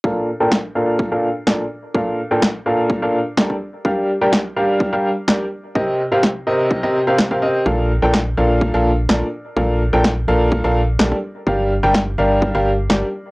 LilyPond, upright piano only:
\new Staff \with { instrumentName = "Upright piano" } { \time 4/4 \key bes \major \tempo 4 = 126 <bes, d' a' bes' f''>8 r16 <bes, d' a' bes' g''>16 r8 <bes, d' a' bes' f''>8. <bes, d' a' bes' f''>16 r8 <bes, d' a' bes' d''>16 r8. | <bes, d' a' bes' f''>8 r16 <bes, d' a' bes' g''>16 r8 <bes, d' a' bes' f''>8. <bes, d' a' bes' f''>16 r8 <g d' a' bes' d''>16 r8. | <g d' g' bes' f''>8 r16 <g d' g' bes' g''>16 r8 <g d' g' bes' f''>8. <g d' g' bes' f''>16 r8 <g d' g' bes' d''>16 r8. | <c c' g' bes' ees''>8 r16 <c c' g' bes' f''>16 r8 <c c' g' bes' ees''>8. <c c' g' bes' ees''>16 r16 <c c' g' bes' f''>16 r16 <c c' g' bes' f''>16 <c' g' bes' ees''>8 |
<bes, d' a' bes' f''>8 r16 <bes, d' a' bes' g''>16 r8 <bes, d' a' bes' f''>8. <bes, d' a' bes' f''>16 r8 <bes, d' a' bes' d''>16 r8. | <bes, d' a' bes' f''>8 r16 <bes, d' a' bes' g''>16 r8 <bes, d' a' bes' f''>8. <bes, d' a' bes' f''>16 r8 <g d' a' bes' d''>16 r8. | <g d' g' bes' f''>8 r16 <g d' g' bes' g''>16 r8 <g d' g' bes' f''>8. <g d' g' bes' f''>16 r8 <g d' g' bes' d''>16 r8. | }